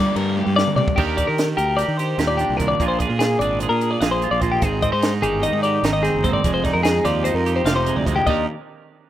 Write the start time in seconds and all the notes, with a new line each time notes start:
Already playing: G2 D3 G3 A#3 D4 G4 D5
0.16 G2 A#4, ride
0.36 G4, high tom
0.46 G2
0.56 D5, snare
0.67 mid tom
0.76 C3 D5, floor tom
0.88 kick
0.96 D#2 D#3 D4 G4 A#4, kick, crash
1.17 G4 D5, kick, closed hi-hat
1.27 D#3 A#4
1.38 snare, closed hi-hat
1.57 D2 G4 A#4, closed hi-hat
1.77 G4 D5, snare, closed hi-hat
1.88 D#3
1.98 G4 C5, snare, closed hi-hat
2.18 D#2 A#2 G4, snare, closed hi-hat
2.28 D5
2.37 D4 G4, closed hi-hat
2.49 C2
2.57 D#2 A#4, kick, closed hi-hat
2.61 D4
2.68 D5
2.80 A#1 A#2 D4 F4 G#4, kick, closed hi-hat
2.88 C5
2.99 G#4 D5, kick, closed hi-hat
3.09 A#2 A#4
3.19 G#4, snare, closed hi-hat
3.39 G#1 D4 G#4 D5, closed hi-hat
3.60 G#4 C5, closed hi-hat
3.69 A#2 A#4
3.81 G#4, closed hi-hat
3.91 D5
4.01 A#1 A#2 G#4 F5, snare, closed hi-hat
4.11 C5
4.22 F4, closed hi-hat
4.31 A#1 D5
4.41 A#2 F4 C5, kick, closed hi-hat
4.51 G4
4.62 G#1 G#2 C4 G#4, kick, closed hi-hat
4.82 C4 D#5, kick, closed hi-hat
4.92 G#2 D#4 C5
5.02 snare, closed hi-hat
5.22 G1 D#3 G4 G#4, closed hi-hat
5.43 D#4 D#5, closed hi-hat
5.53 G#2
5.63 G4 D5, closed hi-hat
5.83 G#1 D#3 D#4, snare, closed hi-hat
5.93 D#5
6.03 C4 G#4, snare, closed hi-hat
6.14 F#1
6.24 G#2 C4 C5, kick, closed hi-hat
6.33 D5
6.44 F1 F2 G#3, kick, closed hi-hat
6.54 C5
6.64 D#4 D5, kick, snare, closed hi-hat
6.73 F2 A#4
6.83 G#4, snare, closed hi-hat
7.04 D#2 F3 G4 D5, snare, closed hi-hat
7.24 D#4 C5, closed hi-hat
7.34 F2 A#4
7.46 G4, closed hi-hat
7.56 C5
7.64 F1 C3 C4 F5, snare, closed hi-hat
7.76 D#4 C5
7.86 G#3, closed hi-hat
7.96 D2 D5
8.06 F2 G#3 C5, kick, closed hi-hat
8.16 G4
8.26 D#2 D#3 D4 G4 D#5, kick, crash
8.31 A#4